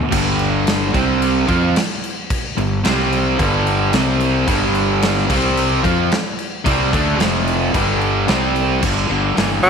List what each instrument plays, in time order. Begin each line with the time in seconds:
0.11 fingered electric bass G1, distorted electric guitar G2 D3 G3, kick, crash
0.39 crash
0.67 snare, crash
0.93 fingered electric bass C2, distorted electric guitar C3 G3 C4, kick, crash
1.22 crash
1.47 fingered electric bass F2, distorted electric guitar F3 C4 F4, kick, crash
1.76 snare, crash
2.04 crash
2.30 kick, crash
2.57 fingered electric bass G1, distorted electric guitar G2 D3, crash
2.84 fingered electric bass C2, distorted electric guitar C3 G3 C4, snare, crash
2.99 snare
3.13 crash
3.38 fingered electric bass G1, distorted electric guitar G2 D3 G3, kick, crash
3.67 crash
3.93 fingered electric bass C2, distorted electric guitar C3 G3 C4, snare, crash
4.20 crash
4.47 fingered electric bass G1, distorted electric guitar G2 D3 G3, kick, crash
4.75 crash
5.02 snare, crash
5.18 snare
5.29 fingered electric bass C2, distorted electric guitar C3 G3 C4, kick, crash
5.57 crash
5.83 fingered electric bass F2, distorted electric guitar F3 C4 F4, kick, crash
6.12 snare, crash
6.39 crash
6.64 fingered electric bass C2, distorted electric guitar C3 G3 C4, kick, crash
6.92 fingered electric bass D2, distorted electric guitar D3 A3 D4, kick, crash
7.18 fingered electric bass F1, distorted electric guitar F2 C3 F3, snare, crash
7.47 crash
7.73 fingered electric bass G1, distorted electric guitar G2 D3 G3, kick, crash
8.01 crash
8.28 fingered electric bass C2, distorted electric guitar C3 G3 C4, snare, crash
8.56 crash
8.81 fingered electric bass G1, distorted electric guitar G2 D3, kick, crash
9.08 fingered electric bass G1, distorted electric guitar G2 D3
9.35 fingered electric bass G1, distorted electric guitar G2 E3, snare, open hi-hat
9.63 fingered electric bass G1, distorted electric guitar G2 E3, tenor saxophone G3